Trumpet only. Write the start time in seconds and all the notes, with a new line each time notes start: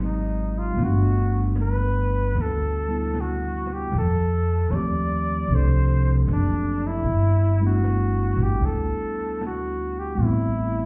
0.05 D#4
0.59 F4
0.84 F#4
1.61 B4
2.41 A4
3.21 F#4
3.73 G4
3.98 A4
4.71 C#5 D5
5.55 C5
6.33 D4
6.87 E4
7.67 F#4
8.43 G4
8.65 A4
9.47 F#4
9.99 G4
10.24 E4